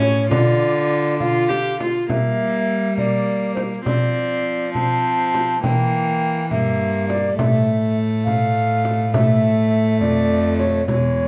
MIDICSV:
0, 0, Header, 1, 5, 480
1, 0, Start_track
1, 0, Tempo, 592885
1, 251, Time_signature, 6, 3, 24, 8
1, 4090, Tempo, 584226
1, 9206, End_track
2, 0, Start_track
2, 0, Title_t, "Flute"
2, 0, Program_c, 0, 73
2, 16, Note_on_c, 0, 73, 80
2, 238, Note_off_c, 0, 73, 0
2, 242, Note_on_c, 0, 74, 85
2, 956, Note_off_c, 0, 74, 0
2, 966, Note_on_c, 0, 77, 82
2, 1454, Note_off_c, 0, 77, 0
2, 1698, Note_on_c, 0, 76, 84
2, 2400, Note_off_c, 0, 76, 0
2, 2412, Note_on_c, 0, 74, 83
2, 2867, Note_off_c, 0, 74, 0
2, 2871, Note_on_c, 0, 72, 67
2, 2927, Note_off_c, 0, 72, 0
2, 3118, Note_on_c, 0, 74, 79
2, 3829, Note_off_c, 0, 74, 0
2, 3833, Note_on_c, 0, 81, 79
2, 4547, Note_off_c, 0, 81, 0
2, 4559, Note_on_c, 0, 79, 85
2, 5272, Note_off_c, 0, 79, 0
2, 5285, Note_on_c, 0, 76, 78
2, 5759, Note_off_c, 0, 76, 0
2, 5768, Note_on_c, 0, 74, 84
2, 5997, Note_off_c, 0, 74, 0
2, 6002, Note_on_c, 0, 76, 79
2, 6488, Note_off_c, 0, 76, 0
2, 6714, Note_on_c, 0, 77, 106
2, 7447, Note_on_c, 0, 76, 82
2, 7459, Note_off_c, 0, 77, 0
2, 8152, Note_off_c, 0, 76, 0
2, 8156, Note_on_c, 0, 74, 86
2, 8629, Note_off_c, 0, 74, 0
2, 8634, Note_on_c, 0, 73, 83
2, 8865, Note_off_c, 0, 73, 0
2, 8869, Note_on_c, 0, 73, 90
2, 9206, Note_off_c, 0, 73, 0
2, 9206, End_track
3, 0, Start_track
3, 0, Title_t, "Viola"
3, 0, Program_c, 1, 41
3, 0, Note_on_c, 1, 61, 74
3, 240, Note_off_c, 1, 61, 0
3, 245, Note_on_c, 1, 65, 61
3, 910, Note_off_c, 1, 65, 0
3, 965, Note_on_c, 1, 65, 70
3, 1204, Note_on_c, 1, 67, 62
3, 1216, Note_off_c, 1, 65, 0
3, 1453, Note_off_c, 1, 67, 0
3, 1459, Note_on_c, 1, 65, 54
3, 1695, Note_off_c, 1, 65, 0
3, 1702, Note_on_c, 1, 58, 61
3, 2384, Note_off_c, 1, 58, 0
3, 2408, Note_on_c, 1, 58, 57
3, 3111, Note_off_c, 1, 58, 0
3, 3116, Note_on_c, 1, 60, 54
3, 3828, Note_off_c, 1, 60, 0
3, 3842, Note_on_c, 1, 60, 56
3, 4552, Note_off_c, 1, 60, 0
3, 4571, Note_on_c, 1, 58, 62
3, 5278, Note_off_c, 1, 58, 0
3, 5287, Note_on_c, 1, 58, 61
3, 5995, Note_off_c, 1, 58, 0
3, 6004, Note_on_c, 1, 57, 68
3, 7415, Note_off_c, 1, 57, 0
3, 7451, Note_on_c, 1, 57, 80
3, 8860, Note_off_c, 1, 57, 0
3, 8883, Note_on_c, 1, 56, 61
3, 9206, Note_off_c, 1, 56, 0
3, 9206, End_track
4, 0, Start_track
4, 0, Title_t, "Cello"
4, 0, Program_c, 2, 42
4, 0, Note_on_c, 2, 45, 75
4, 248, Note_on_c, 2, 50, 64
4, 260, Note_off_c, 2, 45, 0
4, 1535, Note_off_c, 2, 50, 0
4, 1696, Note_on_c, 2, 55, 47
4, 3095, Note_off_c, 2, 55, 0
4, 3128, Note_on_c, 2, 53, 48
4, 4540, Note_off_c, 2, 53, 0
4, 4565, Note_on_c, 2, 52, 59
4, 5291, Note_on_c, 2, 43, 59
4, 5303, Note_off_c, 2, 52, 0
4, 6006, Note_off_c, 2, 43, 0
4, 6011, Note_on_c, 2, 45, 61
4, 8159, Note_on_c, 2, 41, 62
4, 8171, Note_off_c, 2, 45, 0
4, 8883, Note_on_c, 2, 40, 61
4, 8895, Note_off_c, 2, 41, 0
4, 9206, Note_off_c, 2, 40, 0
4, 9206, End_track
5, 0, Start_track
5, 0, Title_t, "Frame drum"
5, 11, Note_on_c, 9, 64, 50
5, 92, Note_off_c, 9, 64, 0
5, 253, Note_on_c, 9, 64, 77
5, 334, Note_off_c, 9, 64, 0
5, 974, Note_on_c, 9, 64, 45
5, 1055, Note_off_c, 9, 64, 0
5, 1216, Note_on_c, 9, 64, 48
5, 1297, Note_off_c, 9, 64, 0
5, 1461, Note_on_c, 9, 64, 51
5, 1542, Note_off_c, 9, 64, 0
5, 1696, Note_on_c, 9, 64, 66
5, 1777, Note_off_c, 9, 64, 0
5, 2411, Note_on_c, 9, 64, 45
5, 2492, Note_off_c, 9, 64, 0
5, 2889, Note_on_c, 9, 64, 51
5, 2970, Note_off_c, 9, 64, 0
5, 3126, Note_on_c, 9, 64, 69
5, 3207, Note_off_c, 9, 64, 0
5, 3846, Note_on_c, 9, 64, 46
5, 3927, Note_off_c, 9, 64, 0
5, 4331, Note_on_c, 9, 64, 50
5, 4413, Note_off_c, 9, 64, 0
5, 4571, Note_on_c, 9, 64, 62
5, 4653, Note_off_c, 9, 64, 0
5, 5290, Note_on_c, 9, 64, 49
5, 5372, Note_off_c, 9, 64, 0
5, 5771, Note_on_c, 9, 64, 51
5, 5853, Note_off_c, 9, 64, 0
5, 6010, Note_on_c, 9, 64, 73
5, 6092, Note_off_c, 9, 64, 0
5, 6732, Note_on_c, 9, 64, 46
5, 6815, Note_off_c, 9, 64, 0
5, 7210, Note_on_c, 9, 64, 50
5, 7292, Note_off_c, 9, 64, 0
5, 7449, Note_on_c, 9, 64, 73
5, 7531, Note_off_c, 9, 64, 0
5, 8167, Note_on_c, 9, 64, 44
5, 8250, Note_off_c, 9, 64, 0
5, 8645, Note_on_c, 9, 64, 48
5, 8727, Note_off_c, 9, 64, 0
5, 8880, Note_on_c, 9, 64, 68
5, 8963, Note_off_c, 9, 64, 0
5, 9206, End_track
0, 0, End_of_file